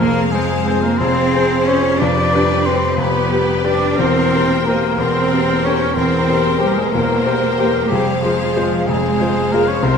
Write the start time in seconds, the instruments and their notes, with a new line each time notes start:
Already playing: double bass section F2, cello section A#3, viola section G#4, violin section C5 F5, flute A#5
0.00 grand piano F1 F2, clarinet A#4
0.31 cello section G#3, grand piano C4 G#4 C5, clarinet G#4, flute G#5
0.65 grand piano C4 G#4 C5, french horn section G#4 C5
0.82 cello section A#3, clarinet A#4, flute A#5
0.98 grand piano F1 F2, cello section C4, viola section G#4, clarinet C5, violin section C5 F5, flute C6
1.35 grand piano C4 G#4 C5
1.65 grand piano C4, cello section C#4, french horn section G#4 C5, clarinet C#5, flute C#6
1.69 grand piano G#4 C5
1.98 grand piano F1 F2, cello section D4, viola section G4, violin section B4 D5, clarinet D5, flute D6
2.35 grand piano G3 G4 B4
2.66 grand piano G3 G4 B4, cello section C4, french horn section G4 B4, clarinet C5, flute C6
2.98 grand piano F1 F2, cello section B3, viola section G4, clarinet B4, violin section B4 D5, flute B5
3.31 grand piano G3 G4 B4
3.64 grand piano G3 G4 B4, cello section D4, french horn section G4 B4, clarinet D5, flute D6
3.99 grand piano E1 E2, double bass section E2, cello section C4, viola section A#4, clarinet C5, violin section C5 G5, flute C6
4.34 grand piano A#3 G4 C5
4.66 cello section A#3, grand piano A#3 G4 C5, french horn section G4 A#4, clarinet A#4, flute A#5
4.98 grand piano E1 E2, cello section C4, viola section A#4, clarinet C5, violin section C5 G5, flute C6
5.33 grand piano A#3 G4 C5
5.64 grand piano A#3 G4 C5, cello section C#4, french horn section G4 A#4, clarinet C#5, flute C#6
5.96 grand piano E1 E2, cello section C4, viola section A#4, clarinet C5, violin section C5 G5, flute C6
6.29 grand piano A#3 G4 C5
6.58 cello section G3, grand piano A#3 G4 C5, clarinet G4, french horn section G4 A#4, flute G5
6.75 cello section G#3, clarinet G#4, flute G#5
6.90 grand piano E1, cello section A#3, clarinet A#4, viola section A#4, violin section C5 G5, flute A#5
6.95 grand piano E2
7.26 grand piano A#3 G4 C5
7.57 grand piano A#3 G4 C5, french horn section G4 A#4
7.88 double bass section F2, cello section G3, clarinet G4, viola section G#4, violin section C5 F5, flute G5
7.92 grand piano F1 F2
8.22 cello section F3, grand piano G#3 F4 C5, clarinet F4, flute F5
8.53 grand piano G#3 F4 C5, french horn section F4 G#4
8.87 grand piano F1 F2, cello section G#3, clarinet G#4, viola section G#4, violin section C5 F5, flute G#5
9.20 grand piano G#3 F4 C5
9.52 grand piano G#3 F4 C5, cello section A#3, french horn section F4 G#4, clarinet A#4, flute A#5
9.67 cello section C#4, clarinet C#5, flute C#6
9.83 grand piano C2 C3, double bass section C2, cello section C4, viola section A#4, clarinet C5, violin section C5 E5, flute C6